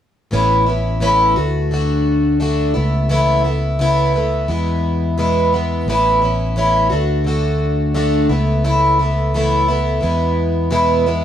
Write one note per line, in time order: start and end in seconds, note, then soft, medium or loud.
0.31 1.35 A1 medium
0.31 0.67 A2 medium
0.31 0.67 E3 medium
0.31 0.67 B3 medium
0.31 0.67 C#4 medium
0.31 0.65 E4 medium
0.66 1.01 B3 soft
0.66 1.01 C#4 soft
0.66 1.01 E4 soft
1.00 1.36 A2 medium
1.00 1.36 E3 medium
1.00 1.37 B3 medium
1.00 1.37 C#4 medium
1.00 1.36 E4 medium
1.36 2.73 D2 medium
1.36 1.71 A3 soft
1.36 1.72 D4 soft
1.36 1.71 F#4 medium
1.71 2.39 D3 medium
1.71 2.39 A3 medium
1.71 2.40 D4 medium
1.71 2.41 F#4 medium
2.40 2.75 D3 medium
2.40 2.75 A3 medium
2.40 2.75 D4 medium
2.40 2.73 F#4 medium
2.74 4.46 C#2 medium
2.74 3.09 A3 soft
2.74 3.09 B3 soft
2.74 3.09 E4 soft
3.09 3.44 C#3 medium
3.09 3.44 E3 medium
3.09 3.45 A3 medium
3.09 3.45 B3 medium
3.09 3.43 E4 medium
3.44 3.79 A3 soft
3.44 3.80 B3 soft
3.44 3.79 E4 soft
3.79 4.14 C#3 medium
3.79 4.14 E3 medium
3.79 4.14 A3 medium
3.79 4.14 B3 medium
3.79 4.13 E4 loud
4.14 4.49 A3 soft
4.14 4.49 B3 soft
4.14 4.49 E4 soft
4.48 5.84 E2 medium
4.48 5.17 E3 medium
4.48 5.18 G#3 medium
4.48 5.18 B3 medium
4.48 5.18 E4 medium
5.18 5.52 E2 medium
5.18 5.52 B2 medium
5.18 5.53 E3 medium
5.18 5.53 G#3 medium
5.18 5.53 B3 medium
5.18 5.51 E4 medium
5.52 5.89 G#3 soft
5.52 5.88 B3 medium
5.52 5.87 E4 soft
5.56 5.88 E3 soft
5.87 6.89 A1 medium
5.87 6.22 A2 medium
5.87 6.23 E3 medium
5.87 6.23 B3 medium
5.87 6.23 C#4 medium
5.87 6.20 E4 medium
6.22 6.56 B3 soft
6.22 6.57 C#4 soft
6.22 6.56 E4 medium
6.56 6.91 A2 medium
6.56 6.91 E3 medium
6.56 6.92 B3 medium
6.56 6.91 C#4 medium
6.56 6.89 E4 medium
6.90 8.27 D2 medium
6.90 7.25 A3 soft
6.90 7.26 D4 soft
6.90 7.25 F#4 medium
7.24 7.93 D3 medium
7.24 7.94 A3 medium
7.24 7.95 D4 medium
7.24 7.95 F#4 medium
7.94 8.29 D3 medium
7.94 8.30 A3 medium
7.94 8.30 D4 medium
7.94 8.29 F#4 medium
8.29 9.99 C#2 medium
8.29 8.64 A3 soft
8.29 8.64 B3 soft
8.29 8.64 E4 medium
8.64 8.99 C#3 medium
8.64 8.99 E3 medium
8.64 8.99 A3 medium
8.64 8.99 B3 medium
8.64 8.98 E4 medium
8.99 9.34 A3 soft
8.99 9.34 B3 soft
8.99 9.34 E4 medium
9.34 9.69 C#3 medium
9.34 9.69 E3 medium
9.34 9.69 A3 medium
9.34 9.69 B3 medium
9.34 9.67 E4 medium
9.68 10.02 A3 soft
9.68 10.02 B3 medium
9.68 10.03 E4 medium
10.01 11.24 E2 medium
10.01 10.70 E3 medium
10.01 10.71 G#3 medium
10.01 10.71 B3 medium
10.01 10.71 E4 medium
10.71 11.06 E2 medium
10.71 11.06 B2 medium
10.71 11.06 E3 medium
10.71 11.07 G#3 medium
10.71 11.06 B3 medium
10.71 11.05 E4 medium
11.06 11.24 E3 soft
11.06 11.24 G#3 soft
11.06 11.24 B3 medium
11.06 11.24 E4 medium